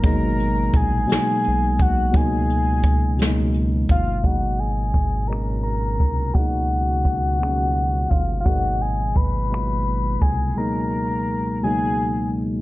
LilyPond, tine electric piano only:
\new Staff \with { instrumentName = "Tine electric piano" } { \clef bass \time 6/8 \key gis \dorian \tempo 4. = 57 <b, fis gis ais dis'>4 r8 <b, fis gis ais dis'>4 r8 | <b, fis gis ais dis'>4 r8 <b, fis gis ais dis'>4 r8 | <b, fis gis ais dis'>4 r8 <b, fis gis ais cis'>4 r8 | <b, fis gis ais dis'>4 r8 <b, eis fis gis ais cis'>4 r8 |
<b, fis gis ais dis'>4 r8 <b, fis gis ais eis'>4 r8 | <cis, b, fis gis ais dis'>4 r8 <cis, b, fis gis ais dis'>4 r8 | }